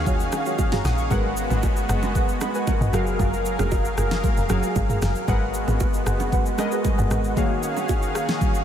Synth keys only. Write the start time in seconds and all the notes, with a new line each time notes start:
Already playing: D#3 A#3 F#4 G#4 C#5 F5
0.59 F5
0.72 C#5 A#5
0.85 F#5 D#6
0.99 F5 C#6
1.10 G#3 G#4 A#4 B4 F#5
2.41 D#5 B5
2.55 B4 G#5
2.67 A#4 F#5
2.81 F#4 D#5
2.93 F#3 F#4 G#4 A#4 F5
4.49 F#3 F#4 G#4 A#4 F5
5.27 G#3 G#4 A#4 B4 F#5
6.58 G#3 G#4 A#4 B4 D#5
7.36 D#3 A#3 F#4 G#4 C#5 F5